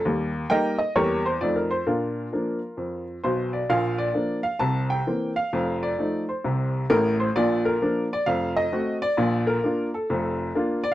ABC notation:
X:1
M:4/4
L:1/16
Q:"Swing" 1/4=131
K:Bb
V:1 name="Upright piano"
z4 [Beg]2 e2 [GB^c]2 =c2 d B c2 | [DFB]12 c2 d2 | f2 d4 f2 a2 g4 f2- | f2 d4 c4 z2 B2 c2 |
d2 B4 d2 f2 e4 d2- | d2 B4 A4 z4 d z |]
V:2 name="Upright piano" clef=bass
[E,,G,]4 [G,B,E]4 [=E,,G,B,]4 [F,,F,A,_E]4 | B,,4 [F,B,D]4 F,,4 [_C,,_C,]4 | [B,,,B,,]4 [F,B,D]4 [C,,C,]4 [=E,B,C]4 | [F,,,F,,]4 [F,A,E]4 [C,,C,]4 [A,,,A,,]4 |
[B,,,B,,]4 [F,B,D]4 [F,,,F,,]4 [A,C_G]4 | [B,,,B,,]4 [B,DF]4 [F,,,F,,]4 [B,DF]4 |]